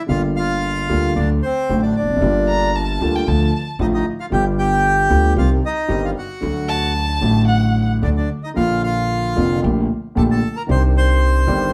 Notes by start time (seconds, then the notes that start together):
0.06 G1 G2 D3 G3 A#3 F5
0.10 F4
0.36 F4 F5
0.89 D2 D3 G3 A#3 F4
1.16 D2 D3 F#3 A3 D4 F#4 D5
1.42 C4 C5
1.69 A1 A2 D3 F#3 A3 F#4
1.83 D4 D5
1.96 D4 D5
2.02 E1 E2
2.09 F1 F2
2.16 F#1 F#2
2.20 G1 G2 D3 G3 A#3
2.24 F4
2.49 A#5
2.75 A5
3.00 D2 D3 G3 A#3 F4
3.15 G5
3.27 D2 D3 F3 A3 F4 A5
3.79 A1 A2 D3 F3 A3 D#4 F4 D#5
3.94 D#4 D#5
4.20 F4 F5
4.30 G1 G2 D3 G3 B3 F4 G4 G5
4.59 G4 G5
5.09 D2 D3 G3 B3 F4
5.36 C2 C3 D#3 G3 C4 F4 G4 F5
5.65 D#4 D#5
5.88 G1 G2 D#3 G3 C4 G4
6.05 F4 F5
6.18 F#4 F#5
6.41 D2 D3 F#3 A3 F#4
6.69 A5
7.20 A1 A2 D3 F#3 A3 F#4
7.48 F#5
8.02 D2 D3 F#3 A3 D4 F#4 D5
8.17 D4 D5
8.43 D#4 D#5
8.54 A#1 A#2 D3 F3 A#3 F5
8.58 F4
8.83 F4 F5
9.36 F1 F2 D3 F3 A#3 F4
9.62 A#1 A#2 D3 A3 A#3 G4
10.15 A#1 A#2 D3 A3 A#3 G4 A4 A5
10.31 A4 A5
10.56 A#4 A#5
10.67 C2 C3 D#3 C4 D4 G4
10.71 C5 C6
10.97 C5 C6
11.47 G1 G2 D#3 C4 D4 G4